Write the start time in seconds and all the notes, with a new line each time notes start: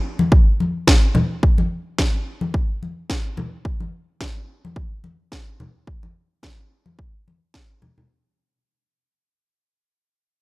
0.19 high conga
0.32 kick
0.60 high conga
0.87 kick, snare
1.15 high conga, low conga
1.43 kick
1.58 high conga
1.98 kick, snare, high conga
2.41 high conga
2.54 kick
2.83 high conga
3.10 kick, snare
3.37 high conga, low conga
3.65 kick
3.80 high conga
4.21 kick, snare, high conga
4.65 high conga
4.76 kick
5.04 high conga
5.32 kick, snare
5.60 high conga, low conga
5.87 kick
6.03 high conga
6.43 kick, snare, high conga
6.86 high conga
6.99 kick
7.28 high conga
7.54 kick, snare
7.82 high conga, low conga
7.98 low conga